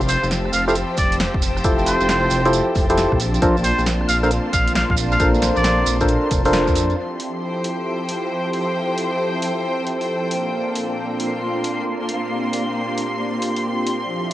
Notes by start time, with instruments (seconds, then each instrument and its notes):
Already playing: detuned saw bass F1, string section F3 F5 C6, string machine C4 G4 A5 E6
0.01 string section C5, shekere
0.09 muted trumpet C5, open hi-hat, shekere
0.23 detuned saw bass F1, cross-stick, shekere
0.31 snare, closed hi-hat, shekere
0.46 cross-stick
0.53 detuned saw bass F1, muted trumpet F5, open hi-hat, shekere
0.68 synth stab E4 F4 G4 A4 C5, muted trumpet F5, string section G5, shekere
0.75 closed hi-hat, shekere
0.97 detuned saw bass F1, muted trumpet D5, kick, open hi-hat, shekere
1.12 closed hi-hat, shekere
1.20 snare, closed hi-hat, shekere
1.34 detuned saw bass F1, kick
1.42 open hi-hat, shekere
1.57 cross-stick, shekere
1.64 detuned saw bass F1, synth stab E4 F4 G4 A4 C5, kick, closed hi-hat, shekere
1.79 shekere
1.86 muted trumpet C5, open hi-hat, shekere
2.00 detuned saw bass F1, cross-stick, shekere
2.09 snare, closed hi-hat, shekere
2.23 cross-stick
2.30 detuned saw bass F1, open hi-hat, shekere
2.45 synth stab E4 F4 G4 A4 C5, closed hi-hat, shekere
2.53 closed hi-hat, shekere
2.75 detuned saw bass F1, kick, open hi-hat, shekere
2.89 synth stab E4 F4 G4 A4 C5, closed hi-hat, shekere
2.98 snare, closed hi-hat, shekere
3.12 detuned saw bass A#1, kick, cross-stick
3.20 string section A#3, string machine C4 D4 F4, open hi-hat, shekere
3.34 closed hi-hat, shekere
3.42 detuned saw bass A#1, synth stab D4 F4 A4 A#4 C5, kick, closed hi-hat, shekere
3.57 shekere
3.64 muted trumpet C5, open hi-hat, shekere
3.79 detuned saw bass A#1, string section C6, cross-stick, shekere
3.86 snare, closed hi-hat, shekere
4.01 cross-stick
4.09 detuned saw bass A#1, muted trumpet F5, open hi-hat, shekere
4.23 synth stab D4 F4 A4 A#4 C5, muted trumpet F5, shekere
4.31 closed hi-hat, shekere
4.53 detuned saw bass A#1, muted trumpet F5, kick, open hi-hat, shekere
4.67 closed hi-hat, shekere
4.75 muted trumpet F5, snare, closed hi-hat, shekere
4.90 detuned saw bass A#1, muted trumpet F5, kick
4.97 open hi-hat, shekere
5.12 muted trumpet F5, cross-stick, shekere
5.20 detuned saw bass A#1, synth stab D4 F4 A4 A#4 C5, kick, closed hi-hat, shekere
5.34 shekere
5.42 snare, open hi-hat, shekere
5.56 detuned saw bass A#1, muted trumpet D5, cross-stick, shekere
5.64 snare, closed hi-hat, shekere
5.79 cross-stick
5.86 detuned saw bass A#1, open hi-hat, shekere
6.01 synth stab D4 F4 A4 A#4 C5, kick, closed hi-hat, shekere
6.08 closed hi-hat, shekere
6.31 detuned saw bass F1, kick, open hi-hat, shekere
6.45 synth stab D4 F4 A4 A#4 C5, open hi-hat, shekere
6.53 snare, closed hi-hat, shekere
6.67 detuned saw bass F2, kick, cross-stick, shekere
6.75 open hi-hat, shekere
6.90 closed hi-hat, shekere
6.98 string section F3, string machine F3 C4 E4 G4 A4
7.20 open hi-hat
7.41 string section C5 G5
7.64 open hi-hat
8.09 open hi-hat
8.53 open hi-hat
8.98 open hi-hat
9.42 open hi-hat
9.87 open hi-hat
10.01 open hi-hat
10.31 string machine A#2 D4 F4, string section A#3, open hi-hat
10.75 open hi-hat
11.16 string section C6, open hi-hat
11.64 open hi-hat
12.09 string machine G4, open hi-hat
12.53 open hi-hat
12.98 open hi-hat
13.42 open hi-hat
13.56 open hi-hat
13.86 open hi-hat
14.09 string machine F3 E4 A4, string section F3
14.30 string section C5